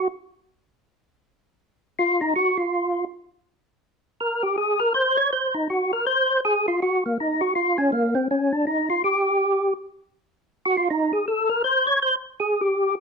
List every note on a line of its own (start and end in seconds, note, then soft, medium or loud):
1.99 2.20 F4 medium
2.21 2.34 D#4 medium
2.36 2.57 F#4 medium
2.58 3.05 F4 medium
4.20 4.43 A#4 medium
4.43 4.56 G4 medium
4.58 4.80 G#4 medium
4.80 4.93 A#4 medium
4.94 5.17 C5 medium
5.17 5.31 C#5 loud
5.33 5.54 C5 medium
5.54 5.68 D#4 medium
5.70 5.92 F#4 medium
5.93 6.05 A#4 medium
6.07 6.40 C5 medium
6.45 6.66 G#4 medium
6.68 6.80 F4 medium
6.82 7.04 F#4 medium
7.06 7.18 A#3 medium
7.20 7.41 D#4 medium
7.41 7.54 F#4 medium
7.55 7.77 F4 medium
7.78 7.91 C#4 medium
7.92 8.14 A#3 medium
8.15 8.28 C4 medium
8.31 8.52 C#4 medium
8.53 8.65 D4 medium
8.67 8.89 D#4 medium
8.90 9.03 F4 medium
9.04 9.73 G4 medium
10.65 10.76 F#4 medium
10.77 10.89 F4 medium
10.90 11.12 D#4 medium
11.13 11.26 G#4 medium
11.28 11.49 A4 medium
11.49 11.62 A#4 loud
11.64 11.86 C5 medium
11.87 12.00 C#5 loud
12.02 12.16 C5 medium
12.40 12.61 G#4 medium
12.61 12.95 G4 medium